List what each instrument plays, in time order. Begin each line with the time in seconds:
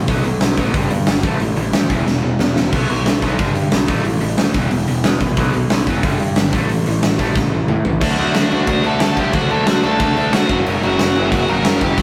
0.08 picked electric bass B1, overdriven electric guitar B2 F#3 B3, kick, open hi-hat
0.24 picked electric bass B1, overdriven electric guitar B2 F#3, open hi-hat
0.41 picked electric bass B1, overdriven electric guitar B2 F#3, snare, open hi-hat
0.57 picked electric bass A1, overdriven electric guitar B2 F#3 B3, kick, open hi-hat
0.74 picked electric bass G1, overdriven electric guitar G2 D3 G3, kick, open hi-hat
0.91 picked electric bass G2, overdriven electric guitar G2 D3, open hi-hat
1.07 picked electric bass G1, overdriven electric guitar G2 D3, snare, open hi-hat
1.23 picked electric bass A1, overdriven electric guitar A2 E3 A3, kick, open hi-hat
1.40 picked electric bass A1, overdriven electric guitar A2 E3, open hi-hat
1.56 picked electric bass A1, overdriven electric guitar A2 E3, open hi-hat
1.73 picked electric bass D2, overdriven electric guitar A2 E3, snare, open hi-hat
1.90 picked electric bass E1, overdriven electric guitar E2 B2 E3, kick, open hi-hat
2.06 picked electric bass E1, overdriven electric guitar E2 B2, snare
2.23 picked electric bass E1, overdriven electric guitar E2 B2
2.39 picked electric bass E2, overdriven electric guitar E2 B2, snare
2.56 picked electric bass E1, overdriven electric guitar E2 B2, snare
2.72 picked electric bass B1, overdriven electric guitar B2 F#3 B3, kick, crash
2.89 picked electric bass B1, overdriven electric guitar B2 F#3, open hi-hat
3.06 picked electric bass B1, overdriven electric guitar B2 F#3, snare, open hi-hat
3.21 picked electric bass B1, overdriven electric guitar B2 F#3 B3, kick, open hi-hat
3.38 picked electric bass G1, overdriven electric guitar G2 D3 G3, kick, open hi-hat
3.55 overdriven electric guitar G2 D3, picked electric bass G2, open hi-hat
3.72 picked electric bass B1, overdriven electric guitar G2 D3, snare, open hi-hat
3.88 picked electric bass A1, overdriven electric guitar A2 E3 A3, kick, open hi-hat
4.04 picked electric bass A1, overdriven electric guitar A2 E3, open hi-hat
4.20 picked electric bass A1, overdriven electric guitar A2 E3, open hi-hat
4.37 picked electric bass D2, overdriven electric guitar A2 E3, snare, open hi-hat
4.54 picked electric bass E1, overdriven electric guitar E2 B2 E3, kick, open hi-hat
4.71 picked electric bass E1, overdriven electric guitar E2 B2, open hi-hat
4.88 picked electric bass E1, overdriven electric guitar E2 B2, open hi-hat
5.04 overdriven electric guitar E2 B2, picked electric bass E2, snare, open hi-hat
5.20 picked electric bass A#1, overdriven electric guitar E2 B2, kick, open hi-hat
5.37 picked electric bass B1, overdriven electric guitar B2 F#3 B3, kick, open hi-hat
5.54 picked electric bass B1, overdriven electric guitar B2 F#3, open hi-hat
5.70 picked electric bass B1, overdriven electric guitar B2 F#3, snare, open hi-hat
5.87 picked electric bass F#1, overdriven electric guitar B2 F#3 B3, kick, open hi-hat
6.03 picked electric bass G1, overdriven electric guitar G2 D3 G3, kick, open hi-hat
6.20 overdriven electric guitar G2 D3, picked electric bass G2, open hi-hat
6.36 picked electric bass G1, overdriven electric guitar G2 D3, snare, open hi-hat
6.52 picked electric bass A1, overdriven electric guitar A2 E3 A3, kick, open hi-hat
6.68 picked electric bass A1, overdriven electric guitar A2 E3, open hi-hat
6.84 picked electric bass A1, overdriven electric guitar A2 E3, open hi-hat
7.00 picked electric bass A1, overdriven electric guitar A2 E3, snare, open hi-hat
7.18 picked electric bass A1, overdriven electric guitar A2 E3 A3, kick, open hi-hat
7.34 picked electric bass A1, overdriven electric guitar A2 E3, kick, snare
7.52 picked electric bass A1, overdriven electric guitar A2 E3
7.68 overdriven electric guitar A2 E3, picked electric bass A2, mid tom
7.85 picked electric bass A1, overdriven electric guitar A2 E3, floor tom
8.00 picked electric bass D2, overdriven electric guitar D3 F#3 A3 D4 F#4, kick, crash
8.17 picked electric bass D2, overdriven electric guitar D3 A3 D4, lead electric guitar F#4 F#5, crash
8.33 picked electric bass D2, overdriven electric guitar D3 A3 D4, snare, crash
8.50 picked electric bass D2, overdriven electric guitar D3 F#3 A3 D4 F#4, crash
8.67 picked electric bass D2, overdriven electric guitar D3 A3 D4, lead electric guitar F#4 F#5, kick, crash
8.83 picked electric bass D2, overdriven electric guitar D3 A3 D4, lead electric guitar A4 A5, crash
9.00 picked electric bass D2, overdriven electric guitar D3 F#3 A3 D4 F#4, lead electric guitar A4 A5, snare, crash
9.17 picked electric bass D2, overdriven electric guitar D3 A3 D4, lead electric guitar G4 G5, kick, crash
9.33 picked electric bass D2, overdriven electric guitar D3 F#3 A3 D4 F#4, lead electric guitar F#4 F#5, kick, crash
9.49 picked electric bass D2, overdriven electric guitar D3 A3 D4, lead electric guitar A4 A5, crash
9.66 picked electric bass D2, overdriven electric guitar D3 A3 D4, lead electric guitar F#4 F#5, snare, crash
9.82 picked electric bass D2, overdriven electric guitar D3 F#3 A3 D4 F#4, lead electric guitar A4 A5, crash
9.98 picked electric bass D2, overdriven electric guitar D3 A3 D4, lead electric guitar A4 A5, kick, crash
10.15 picked electric bass D2, overdriven electric guitar D3 A3 D4, crash
10.31 picked electric bass D2, overdriven electric guitar D3 F#3 A3 D4 F#4, lead electric guitar F#4 F#5, snare, crash
10.49 picked electric bass F#1, overdriven electric guitar F#2 C#3 F#3 A#3 C#4 F#4, kick, crash
10.66 picked electric bass F#1, overdriven electric guitar F#2 C#3 F#3, crash
10.80 picked electric bass F#1, overdriven electric guitar F#2 C#3 F#3, lead electric guitar F#4 F#5, crash
10.98 picked electric bass F#1, overdriven electric guitar F#2 C#3 F#3 A#3 C#4 F#4, snare, crash
11.14 picked electric bass F#1, overdriven electric guitar F#2 C#3 F#3, crash
11.32 picked electric bass F#1, overdriven electric guitar F#2 C#3 F#3, lead electric guitar F#4 F#5, kick, crash
11.47 picked electric bass F#1, overdriven electric guitar F#2 C#3 F#3 A#3 C#4 F#4, lead electric guitar A#4 A#5, crash
11.64 picked electric bass F#1, overdriven electric guitar F#2 C#3 F#3, lead electric guitar A#4 A#5, snare, crash
11.81 picked electric bass F#1, overdriven electric guitar F#2 C#3 F#3, lead electric guitar G4 G5, kick, crash
11.98 lead electric guitar F#5, kick, crash